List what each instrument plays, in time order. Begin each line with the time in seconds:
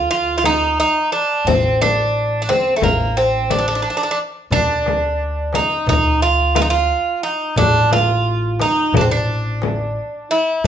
Already playing: upright bass D2
0.11 bouzouki F4
0.38 bouzouki F4
0.44 bouzouki D#4, frame drum
0.80 bouzouki D#4
1.12 bouzouki D4
1.44 upright bass A1, bouzouki C4, frame drum
1.81 bouzouki D4, frame drum
2.42 bouzouki D4
2.49 bouzouki C4, frame drum
2.76 bouzouki A3
2.81 upright bass A1, bouzouki A#3, frame drum
3.17 bouzouki C4
3.50 bouzouki D4, frame drum
3.59 bouzouki D4
3.68 bouzouki D4
3.75 bouzouki D4
3.82 bouzouki D4
3.90 bouzouki D4
3.97 bouzouki D4
4.03 bouzouki D4
4.11 bouzouki D4
4.50 upright bass D2, bouzouki D4, darbuka dum, frame drum
4.86 darbuka tek, frame drum
5.20 darbuka ka
5.53 bouzouki D#4, darbuka tek, frame drum
5.86 upright bass D2, bouzouki D#4, darbuka dum, frame drum
6.05 darbuka ka
6.22 bouzouki F4
6.55 bouzouki F4, darbuka tek, frame drum
6.62 bouzouki D#4
6.70 bouzouki F4
6.90 darbuka ka
7.23 bouzouki D#4
7.56 upright bass A1, bouzouki D4, darbuka dum, frame drum
7.91 bouzouki F4, darbuka tek, frame drum
8.25 darbuka ka
8.60 bouzouki D#4, darbuka tek, frame drum
8.92 upright bass A1, darbuka dum, frame drum
8.97 bouzouki D4
9.01 bouzouki C4
9.11 bouzouki D4
9.62 darbuka tek, frame drum
9.97 darbuka ka
10.31 bouzouki E4, darbuka ka